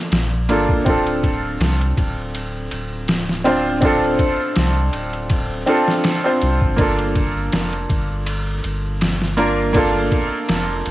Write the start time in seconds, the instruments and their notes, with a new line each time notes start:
Already playing: upright piano A#3 D4 F4 A4
0.12 sub bass A#1, snare, ride
0.49 sub bass G1, upright piano A#3 D4 F4 A4, ride
0.69 kick
0.85 sub bass D1, upright piano C4 D4 F4, kick, ride
0.89 upright piano A4
1.06 ride
1.23 kick, ride
1.60 sub bass C2, snare, ride
1.81 ride
1.97 sub bass D1, kick, ride
2.35 ride
2.71 sub bass D1, ride
3.08 snare, ride
3.29 snare
3.44 upright piano C4 D4 F4 C5, ride
3.81 upright piano C4 D4 F4, kick, ride
3.86 upright piano A4
4.19 kick, ride
4.56 sub bass C2, snare, ride
4.93 sub bass D1, ride
5.13 ride
5.30 kick, ride
5.66 upright piano C4 D4 F4 A4, ride
5.88 snare
6.04 snare, ride
6.24 upright piano C4 D4 F4 C5
6.41 sub bass C2, ride
6.61 sub bass G1, kick
6.76 sub bass G1, upright piano A#3 D4 F4, kick, ride
6.81 upright piano A4
6.99 ride
7.15 kick, ride
7.52 sub bass F1, snare, ride
7.73 ride
7.90 sub bass G1, kick, ride
8.26 ride
8.64 sub bass G1, ride
9.01 snare, ride
9.22 snare
9.37 upright piano A#3 D4 F4 A#4, ride
9.73 upright piano A#3 D4 F4, kick, ride
9.77 upright piano A4
10.11 kick, ride
10.49 sub bass F1, snare, ride
10.86 sub bass G1, ride